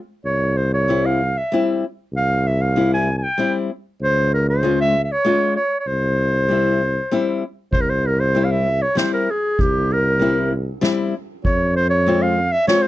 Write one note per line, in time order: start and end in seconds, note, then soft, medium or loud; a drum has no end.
0.25 1.38 C2 medium
0.25 0.59 C#5 medium
0.57 0.73 C5 medium
0.74 1.07 C#5 medium
0.88 1.20 G3 medium
0.88 1.20 C4 soft
0.88 1.21 E4 medium
1.06 1.39 F5 medium
1.38 1.68 E5 medium
1.52 1.83 G3 medium
1.52 1.84 C4 medium
1.52 1.84 E4 medium
2.13 3.25 C2 medium
2.13 2.49 F5 medium
2.47 2.63 E5 medium
2.62 2.92 F5 medium
2.76 3.07 G3 medium
2.76 3.07 C4 soft
2.76 3.08 E4 medium
2.94 3.15 G#5 medium
3.18 3.25 G#5 soft
3.23 3.54 G5 medium
3.38 3.69 G3 medium
3.38 3.70 C4 medium
3.38 3.70 E4 medium
4.01 5.13 C#2 loud
4.01 4.30 C5 loud
4.34 4.47 A#4 medium
4.49 4.77 C5 medium
4.63 4.94 G#3 medium
4.63 4.95 C#4 soft
4.63 4.95 F4 medium
4.81 5.02 E5 medium
5.04 5.13 E5 medium
5.12 5.56 C#5 medium
5.25 5.56 G#3 medium
5.25 5.56 C#4 medium
5.25 5.57 F4 medium
5.56 5.78 C#5 medium
5.80 5.89 C#5 medium
5.87 6.99 C2 medium
5.87 7.42 C5 medium
6.49 6.80 G3 soft
6.49 6.81 C4 medium
6.49 6.81 E4 medium
7.11 7.42 G3 medium
7.11 7.42 C4 medium
7.11 7.43 E4 medium
7.73 8.84 C2 medium
7.73 7.83 C5 medium
7.73 kick medium
7.73 ride soft
7.81 7.91 A#4 medium
7.90 8.08 C5 medium
8.03 8.21 A#4 medium
8.03 ride soft
8.20 8.46 C5 medium
8.35 8.66 G3 medium
8.35 8.66 C4 medium
8.35 8.67 E4 medium
8.45 8.53 F5 medium
8.51 8.83 E5 medium
8.82 8.99 C#5 medium
8.95 9.27 G3 medium
8.95 9.28 C4 medium
8.95 9.28 E4 medium
8.95 9.13 C5 medium
8.95 snare medium
8.95 ride soft
9.14 9.32 A#4 medium
9.30 9.63 G#4 medium
9.59 10.70 C2 medium
9.59 9.94 G4 medium
9.59 kick medium
9.59 ride medium
9.93 10.53 A#4 medium
10.19 10.51 G3 medium
10.19 10.52 C4 soft
10.19 10.52 E4 medium
10.19 ride soft
10.81 11.13 G3 medium
10.81 11.13 C4 medium
10.81 11.14 E4 medium
10.81 snare medium
10.81 ride soft
11.44 12.56 F2 medium
11.44 11.74 C#5 medium
11.44 kick medium
11.44 ride soft
11.76 11.89 C5 medium
11.76 ride soft
11.90 12.23 C#5 medium
12.07 12.37 G#3 medium
12.07 12.38 C4 medium
12.07 12.38 F4 medium
12.22 12.54 F5 medium
12.52 12.67 E5 medium
12.67 12.88 G#3 medium
12.67 12.88 C4 medium
12.67 12.88 F4 medium
12.67 12.84 C#5 loud
12.67 snare medium
12.67 ride soft
12.82 12.88 C5 medium